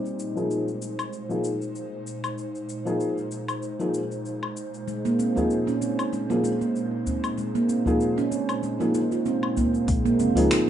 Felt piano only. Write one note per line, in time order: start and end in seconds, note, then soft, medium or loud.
0.35 0.65 F3 medium
0.35 0.65 A#3 medium
0.35 0.66 D#4 medium
0.35 0.66 G#4 medium
1.29 1.47 F3 medium
1.29 1.47 A#3 medium
1.29 1.47 D#4 medium
1.29 1.48 G#4 medium
2.85 3.15 F3 medium
2.85 3.15 A#3 medium
2.85 3.15 D#4 medium
2.85 3.16 G#4 medium
3.79 3.97 F3 medium
3.79 3.97 A#3 medium
3.79 3.97 D#4 medium
3.79 3.98 G#4 medium
5.36 5.65 F3 medium
5.36 5.65 A#3 medium
5.36 5.66 D#4 medium
5.36 5.66 G#4 medium
6.30 6.47 F3 medium
6.30 6.47 A#3 medium
6.30 6.47 D#4 medium
6.30 6.48 G#4 medium
7.86 8.15 F3 medium
7.86 8.15 A#3 medium
7.86 8.16 D#4 medium
7.86 8.16 G#4 medium
8.79 8.97 F3 medium
8.79 8.97 A#3 medium
8.79 8.97 D#4 medium
8.79 8.98 G#4 medium
10.35 10.65 F3 medium
10.35 10.65 A#3 medium
10.35 10.66 D#4 medium
10.35 10.66 G#4 medium